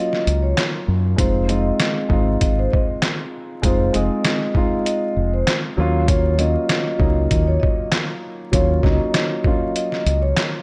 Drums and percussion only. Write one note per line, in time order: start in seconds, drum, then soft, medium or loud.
0.13 snare soft
0.27 closed hi-hat medium
0.58 snare loud
0.58 clap medium
0.58 closed hi-hat medium
1.18 kick loud
1.18 closed hi-hat loud
1.49 closed hi-hat medium
1.80 snare loud
1.80 clap medium
1.80 closed hi-hat medium
2.10 kick medium
2.41 kick medium
2.41 closed hi-hat medium
2.73 kick medium
3.02 snare loud
3.02 clap medium
3.02 closed hi-hat medium
3.63 kick loud
3.63 closed hi-hat loud
3.94 closed hi-hat medium
4.25 snare loud
4.25 clap medium
4.25 closed hi-hat medium
4.55 kick medium
4.86 closed hi-hat medium
5.47 snare loud
5.47 clap medium
5.47 closed hi-hat medium
6.08 kick loud
6.08 closed hi-hat loud
6.39 closed hi-hat medium
6.69 snare loud
6.69 clap medium
6.69 closed hi-hat medium
7.00 kick medium
7.31 kick medium
7.31 closed hi-hat medium
7.63 kick medium
7.92 snare loud
7.92 clap medium
7.92 closed hi-hat medium
8.53 kick loud
8.53 closed hi-hat loud
8.83 kick medium
8.83 snare soft
9.14 snare loud
9.14 clap medium
9.14 closed hi-hat medium
9.44 kick medium
9.76 closed hi-hat medium
9.92 snare soft
10.07 closed hi-hat medium
10.37 snare loud
10.37 clap medium
10.37 closed hi-hat medium